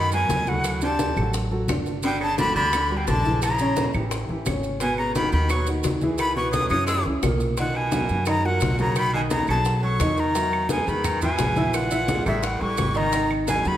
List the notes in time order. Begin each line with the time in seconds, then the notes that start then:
Already playing: F#2 D#3 D#4 D#5 B5
0.12 B2 F#3 F#4 A#4 G#5, high bongo, high conga, maracas
0.29 D2, high bongo, low bongo, high conga, maracas
0.47 A2 F#3 F#4 A4 F#5, high bongo, high conga, maracas
0.64 high bongo, high conga, claves, maracas
0.81 C3 D3 D4 D5 A5, high conga, maracas
0.99 high bongo, high conga, maracas
1.17 A1 F#3 F#4 A4, high bongo, high conga, claves, maracas
1.33 high bongo, high conga, maracas
1.51 F#3 F#4 A4, high bongo, high conga
1.68 G1 D3 D4 D5, high bongo, low bongo, high conga, claves, maracas
1.86 high bongo, maracas
2.03 B2 D3 D4 D5 G5, high bongo, high conga, maracas
2.20 C#3 A5, high bongo, high conga, claves
2.38 D3 G3 F#4 G4 B5, high bongo, high conga, maracas
2.56 D2 D3 B5, high conga, maracas
2.73 D3 D4 D5, high bongo, high conga, claves, maracas
2.90 G3 F#4 G4, high bongo, high conga
2.96 B2 G5
3.07 A#1 D3 A5, high bongo, low bongo, high conga, maracas
3.25 E3 E4 G#4, high bongo, high conga, maracas
3.42 C#3 A#5, high bongo, high conga, claves, maracas
3.59 C#3 C#4 C#5, high conga, maracas
3.76 high bongo, high conga, maracas
3.94 A1 E3 E4 G4, high bongo, high conga, claves, maracas
4.11 high bongo, high conga, maracas
4.29 A1 E3 E4 G4, high bongo, high conga
4.46 G#1 C#3 C#4 C#5, high bongo, low bongo, high conga, claves, maracas
4.63 high bongo, maracas
4.80 B2 B3 B4 G#5, high bongo, high conga, maracas
4.98 C#3 A#5, high bongo, high conga, claves
5.15 D#3 D#4 F#4 B5, high bongo, high conga, maracas
5.32 D#2 D#3 B5, high conga, maracas
5.49 B2 F#3 B3 B4 C#6, high bongo, high conga, claves, maracas
5.66 D#3 D#4 F#4, high bongo, high conga, maracas
5.83 C#2, high bongo, low bongo, high conga, maracas
6.01 E3 E4 G#4, high bongo, high conga, maracas
6.18 D#3 B5, high bongo, high conga, claves, maracas
6.36 B2 E3 B3 B4 C#6, high conga
6.51 F#3 D#6, high bongo, high conga, maracas
6.69 F#2 C#3 F#3 C#4 E4 D#6, high bongo, high conga, claves, maracas
6.87 G#3 E6, high bongo, high conga, maracas
7.06 C#2 C#3 C#4 E4, high bongo, high conga
7.23 B1 A#2 A#3 A#4, high bongo, low bongo, high conga, claves, maracas
7.40 high bongo, maracas
7.57 A#2 D#3 D#4 D#5 F#5, high bongo, high conga, maracas
7.74 B2 G#5, high bongo, high conga, claves
7.92 F#3 F#4 A#4, high bongo, high conga, maracas
8.09 F#2, high conga, maracas
8.26 C#3 D#3 D#4 D#5 A#5, high bongo, high conga, claves, maracas
8.44 A#2 F#3 F#4 A#4 F#5, high bongo, high conga
8.60 B1, high bongo, low bongo, high conga, maracas
8.78 C#3 F#3 F#4 A#4 A#5, high bongo, high conga, maracas
8.96 D#3 B5, high bongo, high conga, claves, maracas
9.13 B2 D#3 D#4 D#5 G#5, high conga
9.30 C#3 A#5, high bongo, high conga, maracas
9.47 B1 C#3 F#3 F#4 A4 A5, high bongo, high conga, claves, maracas
9.65 high bongo, high conga, maracas
9.83 F#3 F#4 A4 C#6, high bongo, high conga
9.99 E2 D#3 D#4 D#5, high bongo, low bongo, high conga, claves, maracas
10.17 D#3 A#5, high bongo, maracas
10.35 F#3 F#4 E5, high bongo, high conga, maracas
10.52 high bongo, high conga, claves
10.69 B2 G#3 G#4 B4 G#5, high bongo, high conga, maracas
10.87 E2 D#3 G#3 G#4 B4 B5, high conga, maracas
11.04 D#3 A#5, high bongo, high conga, low conga, claves, maracas
11.22 B2 E3 E4 E5 G#5, high bongo, high conga, low conga, maracas
11.38 A#1 G#3 G#4 B4, high bongo, low bongo, high conga, maracas
11.56 E3 E4 E5, high bongo, high conga, maracas
11.74 A#2 F#5, high bongo, high conga, claves, maracas
11.91 E3 E4 E5, high conga, maracas
12.08 G#3 G#4 A#4, high bongo, high conga, maracas
12.25 A1 G#2 G3 G4 A4 E5, high bongo, high conga, claves, maracas
12.43 A2 F#5, high bongo, high conga, maracas
12.60 A1 E3 G3 G4 A4 C#6, high bongo, high conga
12.77 G#1, high bongo, low bongo, high conga, claves, maracas
12.94 D#3 D#4 D#5 A#5, high bongo, maracas
13.12 D#3 D#4 D#5, high bongo, high conga, maracas
13.31 high bongo, high conga, claves
13.48 B2 F#3 F#4 G#4 G#5, high bongo, high conga, maracas
13.65 D#2 D#3 F#3 F#4 G#4 B5, high conga, maracas